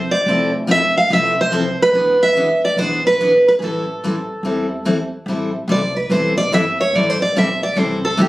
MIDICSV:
0, 0, Header, 1, 4, 480
1, 0, Start_track
1, 0, Key_signature, 0, "minor"
1, 0, Tempo, 416378
1, 310, Time_signature, 4, 2, 24, 8
1, 9550, End_track
2, 0, Start_track
2, 0, Title_t, "Steel-string acoustic guitar"
2, 0, Program_c, 0, 25
2, 0, Note_on_c, 0, 72, 84
2, 130, Note_on_c, 0, 74, 92
2, 154, Note_off_c, 0, 72, 0
2, 579, Note_off_c, 0, 74, 0
2, 820, Note_on_c, 0, 76, 98
2, 1090, Note_off_c, 0, 76, 0
2, 1123, Note_on_c, 0, 77, 80
2, 1288, Note_off_c, 0, 77, 0
2, 1304, Note_on_c, 0, 76, 90
2, 1601, Note_off_c, 0, 76, 0
2, 1623, Note_on_c, 0, 72, 90
2, 2047, Note_off_c, 0, 72, 0
2, 2102, Note_on_c, 0, 71, 93
2, 2567, Note_on_c, 0, 76, 93
2, 2573, Note_off_c, 0, 71, 0
2, 2999, Note_off_c, 0, 76, 0
2, 3051, Note_on_c, 0, 74, 81
2, 3208, Note_off_c, 0, 74, 0
2, 3213, Note_on_c, 0, 72, 83
2, 3486, Note_off_c, 0, 72, 0
2, 3535, Note_on_c, 0, 71, 82
2, 4002, Note_off_c, 0, 71, 0
2, 4016, Note_on_c, 0, 71, 77
2, 4059, Note_off_c, 0, 71, 0
2, 4136, Note_on_c, 0, 68, 51
2, 4172, Note_off_c, 0, 68, 0
2, 4194, Note_on_c, 0, 69, 80
2, 5566, Note_off_c, 0, 69, 0
2, 6589, Note_on_c, 0, 74, 78
2, 6866, Note_off_c, 0, 74, 0
2, 6876, Note_on_c, 0, 71, 60
2, 7035, Note_off_c, 0, 71, 0
2, 7049, Note_on_c, 0, 72, 68
2, 7336, Note_off_c, 0, 72, 0
2, 7349, Note_on_c, 0, 74, 86
2, 7512, Note_off_c, 0, 74, 0
2, 7538, Note_on_c, 0, 76, 87
2, 7821, Note_off_c, 0, 76, 0
2, 7845, Note_on_c, 0, 73, 80
2, 8029, Note_off_c, 0, 73, 0
2, 8029, Note_on_c, 0, 74, 79
2, 8182, Note_off_c, 0, 74, 0
2, 8182, Note_on_c, 0, 72, 55
2, 8319, Note_off_c, 0, 72, 0
2, 8324, Note_on_c, 0, 74, 72
2, 8472, Note_off_c, 0, 74, 0
2, 8508, Note_on_c, 0, 76, 90
2, 8787, Note_off_c, 0, 76, 0
2, 8798, Note_on_c, 0, 74, 79
2, 8983, Note_off_c, 0, 74, 0
2, 8983, Note_on_c, 0, 72, 63
2, 9264, Note_off_c, 0, 72, 0
2, 9276, Note_on_c, 0, 69, 82
2, 9436, Note_off_c, 0, 69, 0
2, 9468, Note_on_c, 0, 67, 73
2, 9550, Note_off_c, 0, 67, 0
2, 9550, End_track
3, 0, Start_track
3, 0, Title_t, "Steel-string acoustic guitar"
3, 0, Program_c, 1, 25
3, 321, Note_on_c, 1, 53, 70
3, 327, Note_on_c, 1, 60, 68
3, 332, Note_on_c, 1, 64, 71
3, 336, Note_on_c, 1, 69, 81
3, 567, Note_off_c, 1, 53, 0
3, 570, Note_off_c, 1, 60, 0
3, 572, Note_off_c, 1, 64, 0
3, 574, Note_off_c, 1, 69, 0
3, 776, Note_on_c, 1, 53, 74
3, 786, Note_on_c, 1, 60, 77
3, 793, Note_on_c, 1, 64, 79
3, 796, Note_on_c, 1, 69, 78
3, 916, Note_off_c, 1, 53, 0
3, 921, Note_off_c, 1, 60, 0
3, 924, Note_off_c, 1, 64, 0
3, 926, Note_off_c, 1, 69, 0
3, 1269, Note_on_c, 1, 53, 66
3, 1272, Note_on_c, 1, 60, 66
3, 1278, Note_on_c, 1, 64, 72
3, 1288, Note_on_c, 1, 69, 70
3, 1521, Note_off_c, 1, 53, 0
3, 1522, Note_off_c, 1, 60, 0
3, 1525, Note_off_c, 1, 64, 0
3, 1530, Note_off_c, 1, 69, 0
3, 1750, Note_on_c, 1, 53, 99
3, 1756, Note_on_c, 1, 60, 84
3, 1758, Note_on_c, 1, 64, 98
3, 1764, Note_on_c, 1, 69, 97
3, 1883, Note_off_c, 1, 53, 0
3, 1886, Note_off_c, 1, 60, 0
3, 1887, Note_off_c, 1, 64, 0
3, 1890, Note_off_c, 1, 69, 0
3, 2236, Note_on_c, 1, 52, 67
3, 2244, Note_on_c, 1, 59, 71
3, 2251, Note_on_c, 1, 62, 64
3, 2251, Note_on_c, 1, 68, 74
3, 2484, Note_off_c, 1, 52, 0
3, 2488, Note_off_c, 1, 59, 0
3, 2491, Note_off_c, 1, 62, 0
3, 2491, Note_off_c, 1, 68, 0
3, 2726, Note_on_c, 1, 52, 81
3, 2729, Note_on_c, 1, 59, 91
3, 2735, Note_on_c, 1, 62, 85
3, 2738, Note_on_c, 1, 68, 94
3, 2851, Note_off_c, 1, 52, 0
3, 2852, Note_off_c, 1, 59, 0
3, 2856, Note_off_c, 1, 62, 0
3, 2857, Note_off_c, 1, 68, 0
3, 3197, Note_on_c, 1, 52, 71
3, 3206, Note_on_c, 1, 62, 69
3, 3207, Note_on_c, 1, 59, 74
3, 3211, Note_on_c, 1, 68, 86
3, 3444, Note_off_c, 1, 52, 0
3, 3449, Note_off_c, 1, 59, 0
3, 3449, Note_off_c, 1, 62, 0
3, 3452, Note_off_c, 1, 68, 0
3, 3695, Note_on_c, 1, 52, 83
3, 3696, Note_on_c, 1, 59, 89
3, 3698, Note_on_c, 1, 62, 85
3, 3709, Note_on_c, 1, 68, 92
3, 3815, Note_off_c, 1, 52, 0
3, 3816, Note_off_c, 1, 59, 0
3, 3817, Note_off_c, 1, 62, 0
3, 3822, Note_off_c, 1, 68, 0
3, 4171, Note_on_c, 1, 52, 69
3, 4176, Note_on_c, 1, 55, 73
3, 4179, Note_on_c, 1, 64, 77
3, 4182, Note_on_c, 1, 60, 66
3, 4192, Note_on_c, 1, 69, 81
3, 4412, Note_off_c, 1, 52, 0
3, 4414, Note_off_c, 1, 55, 0
3, 4415, Note_off_c, 1, 64, 0
3, 4417, Note_off_c, 1, 60, 0
3, 4422, Note_off_c, 1, 69, 0
3, 4654, Note_on_c, 1, 52, 79
3, 4660, Note_on_c, 1, 55, 82
3, 4663, Note_on_c, 1, 60, 84
3, 4671, Note_on_c, 1, 64, 81
3, 4673, Note_on_c, 1, 69, 86
3, 4774, Note_off_c, 1, 52, 0
3, 4777, Note_off_c, 1, 55, 0
3, 4779, Note_off_c, 1, 60, 0
3, 4783, Note_off_c, 1, 64, 0
3, 4784, Note_off_c, 1, 69, 0
3, 5125, Note_on_c, 1, 52, 59
3, 5127, Note_on_c, 1, 55, 72
3, 5130, Note_on_c, 1, 60, 71
3, 5134, Note_on_c, 1, 64, 70
3, 5137, Note_on_c, 1, 69, 73
3, 5368, Note_off_c, 1, 52, 0
3, 5369, Note_off_c, 1, 55, 0
3, 5371, Note_off_c, 1, 60, 0
3, 5373, Note_off_c, 1, 64, 0
3, 5375, Note_off_c, 1, 69, 0
3, 5596, Note_on_c, 1, 52, 84
3, 5601, Note_on_c, 1, 55, 77
3, 5602, Note_on_c, 1, 60, 82
3, 5602, Note_on_c, 1, 64, 93
3, 5608, Note_on_c, 1, 69, 90
3, 5725, Note_off_c, 1, 52, 0
3, 5728, Note_off_c, 1, 55, 0
3, 5728, Note_off_c, 1, 60, 0
3, 5728, Note_off_c, 1, 64, 0
3, 5732, Note_off_c, 1, 69, 0
3, 6088, Note_on_c, 1, 52, 64
3, 6090, Note_on_c, 1, 60, 62
3, 6094, Note_on_c, 1, 55, 62
3, 6097, Note_on_c, 1, 64, 67
3, 6103, Note_on_c, 1, 69, 69
3, 6330, Note_off_c, 1, 52, 0
3, 6331, Note_off_c, 1, 60, 0
3, 6333, Note_off_c, 1, 55, 0
3, 6335, Note_off_c, 1, 64, 0
3, 6338, Note_off_c, 1, 69, 0
3, 6544, Note_on_c, 1, 52, 69
3, 6559, Note_on_c, 1, 64, 68
3, 6561, Note_on_c, 1, 55, 83
3, 6564, Note_on_c, 1, 60, 91
3, 6570, Note_on_c, 1, 69, 79
3, 6680, Note_off_c, 1, 52, 0
3, 6688, Note_off_c, 1, 55, 0
3, 6688, Note_off_c, 1, 64, 0
3, 6690, Note_off_c, 1, 60, 0
3, 6693, Note_off_c, 1, 69, 0
3, 7034, Note_on_c, 1, 52, 75
3, 7041, Note_on_c, 1, 55, 65
3, 7043, Note_on_c, 1, 60, 66
3, 7053, Note_on_c, 1, 64, 72
3, 7053, Note_on_c, 1, 69, 69
3, 7283, Note_off_c, 1, 52, 0
3, 7286, Note_off_c, 1, 55, 0
3, 7288, Note_off_c, 1, 60, 0
3, 7293, Note_off_c, 1, 64, 0
3, 7293, Note_off_c, 1, 69, 0
3, 7520, Note_on_c, 1, 52, 87
3, 7524, Note_on_c, 1, 60, 89
3, 7526, Note_on_c, 1, 55, 83
3, 7532, Note_on_c, 1, 64, 98
3, 7533, Note_on_c, 1, 69, 97
3, 7648, Note_off_c, 1, 52, 0
3, 7650, Note_off_c, 1, 60, 0
3, 7651, Note_off_c, 1, 55, 0
3, 7654, Note_off_c, 1, 64, 0
3, 7655, Note_off_c, 1, 69, 0
3, 8008, Note_on_c, 1, 52, 61
3, 8017, Note_on_c, 1, 60, 72
3, 8018, Note_on_c, 1, 55, 64
3, 8018, Note_on_c, 1, 64, 70
3, 8020, Note_on_c, 1, 69, 78
3, 8250, Note_off_c, 1, 52, 0
3, 8255, Note_off_c, 1, 60, 0
3, 8255, Note_off_c, 1, 64, 0
3, 8256, Note_off_c, 1, 55, 0
3, 8256, Note_off_c, 1, 69, 0
3, 8487, Note_on_c, 1, 52, 70
3, 8488, Note_on_c, 1, 64, 90
3, 8491, Note_on_c, 1, 60, 89
3, 8492, Note_on_c, 1, 55, 85
3, 8495, Note_on_c, 1, 69, 90
3, 8612, Note_off_c, 1, 52, 0
3, 8612, Note_off_c, 1, 64, 0
3, 8614, Note_off_c, 1, 55, 0
3, 8614, Note_off_c, 1, 60, 0
3, 8616, Note_off_c, 1, 69, 0
3, 8943, Note_on_c, 1, 52, 72
3, 8949, Note_on_c, 1, 55, 70
3, 8953, Note_on_c, 1, 60, 81
3, 8957, Note_on_c, 1, 64, 76
3, 8961, Note_on_c, 1, 69, 74
3, 9198, Note_off_c, 1, 52, 0
3, 9201, Note_off_c, 1, 55, 0
3, 9203, Note_off_c, 1, 60, 0
3, 9205, Note_off_c, 1, 64, 0
3, 9208, Note_off_c, 1, 69, 0
3, 9422, Note_on_c, 1, 52, 93
3, 9427, Note_on_c, 1, 55, 83
3, 9430, Note_on_c, 1, 60, 80
3, 9434, Note_on_c, 1, 64, 99
3, 9441, Note_on_c, 1, 69, 103
3, 9550, Note_off_c, 1, 52, 0
3, 9550, Note_off_c, 1, 55, 0
3, 9550, Note_off_c, 1, 60, 0
3, 9550, Note_off_c, 1, 64, 0
3, 9550, Note_off_c, 1, 69, 0
3, 9550, End_track
4, 0, Start_track
4, 0, Title_t, "Upright bass"
4, 0, Program_c, 2, 32
4, 302, Note_on_c, 2, 29, 89
4, 1073, Note_off_c, 2, 29, 0
4, 1270, Note_on_c, 2, 36, 85
4, 2038, Note_off_c, 2, 36, 0
4, 2224, Note_on_c, 2, 28, 83
4, 2994, Note_off_c, 2, 28, 0
4, 3187, Note_on_c, 2, 35, 80
4, 3956, Note_off_c, 2, 35, 0
4, 4150, Note_on_c, 2, 33, 85
4, 4918, Note_off_c, 2, 33, 0
4, 5106, Note_on_c, 2, 28, 77
4, 5876, Note_off_c, 2, 28, 0
4, 6061, Note_on_c, 2, 33, 82
4, 6531, Note_off_c, 2, 33, 0
4, 6543, Note_on_c, 2, 36, 85
4, 7012, Note_off_c, 2, 36, 0
4, 7026, Note_on_c, 2, 35, 83
4, 7493, Note_off_c, 2, 35, 0
4, 7507, Note_on_c, 2, 31, 83
4, 7974, Note_off_c, 2, 31, 0
4, 7989, Note_on_c, 2, 33, 86
4, 8456, Note_off_c, 2, 33, 0
4, 8475, Note_on_c, 2, 35, 79
4, 8939, Note_off_c, 2, 35, 0
4, 8951, Note_on_c, 2, 36, 80
4, 9417, Note_off_c, 2, 36, 0
4, 9435, Note_on_c, 2, 31, 89
4, 9550, Note_off_c, 2, 31, 0
4, 9550, End_track
0, 0, End_of_file